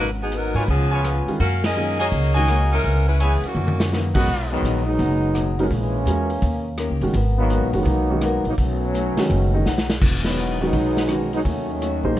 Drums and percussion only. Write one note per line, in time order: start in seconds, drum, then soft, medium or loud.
0.32 closed hi-hat medium
0.55 open hi-hat soft
0.68 kick soft
0.68 open hi-hat soft
1.04 cross-stick medium
1.04 closed hi-hat medium
1.28 open hi-hat soft
1.40 kick soft
1.40 open hi-hat soft
1.64 snare medium
1.64 ride medium
2.00 open hi-hat soft
2.12 kick soft
2.12 open hi-hat soft
2.48 cross-stick medium
2.48 closed hi-hat medium
2.72 open hi-hat soft
2.84 kick soft
2.84 open hi-hat soft
3.20 closed hi-hat medium
3.44 open hi-hat soft
3.56 high tom soft
3.68 high tom medium
3.80 snare medium
3.93 snare medium
4.15 kick medium
4.15 crash medium
4.28 kick soft
4.65 closed hi-hat medium
4.99 kick soft
4.99 open hi-hat soft
5.35 cross-stick medium
5.35 closed hi-hat medium
5.59 open hi-hat soft
5.71 kick soft
5.71 open hi-hat medium
6.07 closed hi-hat medium
6.30 open hi-hat soft
6.42 kick soft
6.42 open hi-hat soft
6.78 cross-stick medium
6.78 closed hi-hat medium
7.02 open hi-hat soft
7.14 kick soft
7.14 open hi-hat medium
7.50 closed hi-hat medium
7.73 open hi-hat soft
7.86 kick soft
7.86 open hi-hat soft
8.21 cross-stick medium
8.21 closed hi-hat medium
8.45 open hi-hat soft
8.58 kick soft
8.58 open hi-hat soft
8.95 closed hi-hat medium
9.17 snare medium
9.17 open hi-hat soft
9.30 kick soft
9.30 open hi-hat soft
9.66 snare soft
9.78 snare medium
9.90 snare medium
10.01 kick medium
10.01 crash medium
10.25 snare medium
10.38 closed hi-hat medium
10.73 kick soft
10.73 open hi-hat medium
10.97 snare medium
11.09 cross-stick medium
11.09 closed hi-hat medium
11.33 open hi-hat soft
11.45 kick soft
11.45 open hi-hat soft
11.82 closed hi-hat medium